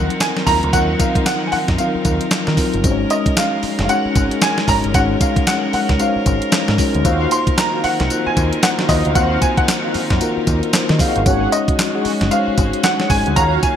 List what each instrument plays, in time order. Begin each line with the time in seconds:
Already playing: string section D#3 C4 D#4 A#4, tine electric piano F3 F#3 C4 D#4 F4 A#4, grand piano F#5
0.10 closed hi-hat
0.20 grand piano G#5, snare, clap, closed hi-hat, tambourine
0.37 snare
0.47 picked electric bass D#2, tine electric piano F#3 C4 D#4 F4 A#4, grand piano A#5, kick, open hi-hat, tambourine
0.63 picked electric bass D2, closed hi-hat
0.73 picked electric bass D#2, tine electric piano F#3 C4 D#4 F4 A#4, grand piano F#5, kick, closed hi-hat, tambourine
0.99 grand piano F5, kick, closed hi-hat, tambourine
1.15 muted picked electric bass stroke, kick, closed hi-hat
1.26 grand piano F#5, snare, clap, closed hi-hat, tambourine
1.47 grand piano G#5
1.52 grand piano F#5, muted picked electric bass stroke, open hi-hat
1.68 picked electric bass F#2, kick, snare, closed hi-hat
1.78 tine electric piano F#3 C4 D#4 F4 A#4, grand piano F5, closed hi-hat, tambourine
1.95 muted picked electric bass stroke
2.05 picked electric bass D#2, kick, closed hi-hat, tambourine
2.21 closed hi-hat
2.31 snare, clap, closed hi-hat, tambourine
2.47 picked electric bass D#3, snare
2.57 tine electric piano F#3 C4 D#4 F4 A#4, kick, open hi-hat, tambourine
2.74 picked electric bass G1, closed hi-hat
2.84 picked electric bass G#1, string section G#3 C#4, tine electric piano G#3 C#4 D#4 F#4 C5, kick, closed hi-hat, tambourine
2.92 tine electric piano C#5
3.10 grand piano D#5, closed hi-hat, tambourine
3.26 muted picked electric bass stroke, kick, closed hi-hat
3.37 grand piano F5, snare, clap, closed hi-hat, tambourine
3.63 muted picked electric bass stroke, open hi-hat
3.79 picked electric bass F#1, snare, closed hi-hat
3.84 grand piano F5
3.89 tine electric piano G#3 C#4 D#4 F#4 C#5, grand piano F#5, closed hi-hat, tambourine
4.06 muted picked electric bass stroke
4.15 picked electric bass G#1, kick, closed hi-hat, tambourine
4.31 closed hi-hat
4.41 grand piano G#5, snare, clap, closed hi-hat, tambourine
4.58 snare
4.68 picked electric bass G#1, tine electric piano G#3 C#4 D#4 F#4 C#5, grand piano A#5, kick, open hi-hat, tambourine
4.84 picked electric bass G1, closed hi-hat
4.94 picked electric bass G#1, tine electric piano G#3 C#4 D#4 F#4 C#5, grand piano F#5, kick, closed hi-hat, tambourine
5.21 grand piano F5, kick, closed hi-hat, tambourine
5.36 muted picked electric bass stroke, kick, closed hi-hat
5.47 grand piano F#5, snare, clap, closed hi-hat, tambourine
5.73 grand piano F#5, muted picked electric bass stroke, open hi-hat
5.89 picked electric bass C#2, kick, snare, closed hi-hat
5.99 tine electric piano G#3 C#4 D#4 F#4 C5, grand piano F5, closed hi-hat, tambourine
6.07 tine electric piano C#5
6.16 muted picked electric bass stroke
6.26 picked electric bass G#1, kick, closed hi-hat, tambourine
6.42 closed hi-hat
6.52 snare, clap, closed hi-hat, tambourine
6.68 picked electric bass G#2, snare
6.78 tine electric piano G#3 C#4 D#4 F#4 C#5, kick, open hi-hat, tambourine
6.95 picked electric bass D2, closed hi-hat
7.04 picked electric bass D#2, string section D#3 C4 D#4, tine electric piano A#3 D#4 F4 F#4 C5, analog polysynth F#4 C5 F5, kick, closed hi-hat, tambourine
7.31 grand piano C6, closed hi-hat, tambourine
7.47 muted picked electric bass stroke, kick, closed hi-hat
7.58 grand piano A#5, snare, clap, closed hi-hat, tambourine
7.73 analog polysynth F#4 C5 F5
7.84 grand piano F#5, muted picked electric bass stroke, open hi-hat
8.00 picked electric bass C2, snare, closed hi-hat
8.10 tine electric piano A#3 D#4 F4 F#4 C5, closed hi-hat, tambourine
8.26 grand piano G#5, muted picked electric bass stroke
8.37 picked electric bass D#2, kick, closed hi-hat, tambourine
8.53 closed hi-hat
8.63 grand piano F#5, snare, clap, closed hi-hat, tambourine
8.79 analog polysynth F#4 C5 F5, snare
8.89 picked electric bass D#2, tine electric piano A#3 D#4 F4 F#4 C5, grand piano D#5, kick, open hi-hat, tambourine
9.05 picked electric bass D2, analog polysynth F#4 C5 F5, closed hi-hat
9.10 grand piano F5
9.15 picked electric bass D#2, tine electric piano A#3 C4 D#4 F#4 C5, analog polysynth F#4 C5 F5, grand piano F#5, kick, closed hi-hat, tambourine
9.41 grand piano G#5, kick, closed hi-hat, tambourine
9.57 grand piano F#5, muted picked electric bass stroke, kick, closed hi-hat
9.68 snare, clap, closed hi-hat, tambourine
9.84 analog polysynth F#4 C5 F5
9.94 muted picked electric bass stroke, open hi-hat
10.10 picked electric bass F#2, kick, snare, closed hi-hat
10.21 tine electric piano A#3 D#4 F4 F#4 A#4, closed hi-hat, tambourine
10.38 muted picked electric bass stroke
10.47 picked electric bass D#2, kick, closed hi-hat, tambourine
10.63 closed hi-hat
10.73 tine electric piano D#4 C5, snare, clap, closed hi-hat, tambourine
10.89 picked electric bass D#3, tine electric piano F#4 D#5, snare
10.99 analog polysynth F#4 C5 F5, tine electric piano G#4 F5, kick, open hi-hat, tambourine
11.16 picked electric bass G1, tine electric piano A#4 F#5, closed hi-hat
11.26 picked electric bass G#1, tine electric piano G#3 C#4 D#4 F#4 C#5, string section G#3 C#4 F#4, analog polysynth G#4 C#5 F#5, kick, closed hi-hat, tambourine
11.52 grand piano D#5, closed hi-hat, tambourine
11.68 muted picked electric bass stroke, kick, closed hi-hat
11.79 snare, clap, closed hi-hat, tambourine
11.94 analog polysynth G#4 C#5 F#5
12.05 muted picked electric bass stroke, open hi-hat
12.21 picked electric bass F#1, snare, closed hi-hat
12.31 tine electric piano G#3 C#4 D#4 F#4 C5, grand piano F5, closed hi-hat, tambourine
12.39 tine electric piano C#5
12.48 muted picked electric bass stroke
12.58 picked electric bass G#1, kick, closed hi-hat, tambourine
12.73 closed hi-hat
12.83 grand piano F#5, snare, clap, closed hi-hat, tambourine
13.00 analog polysynth G#4 C#5 F#5, snare
13.10 picked electric bass G#1, tine electric piano G#3 C#4 D#4 F#4 C#5, grand piano G#5, kick, open hi-hat, tambourine
13.26 picked electric bass D2, analog polysynth G#4 C#5 F#5, closed hi-hat
13.36 picked electric bass D#2, string section D#3 F#3 F5, tine electric piano A#3 D#4 F4 F#4 C#5, analog polysynth F#4 C#5 F5, grand piano A#5, kick, closed hi-hat, tambourine
13.63 grand piano G#5, kick, closed hi-hat, tambourine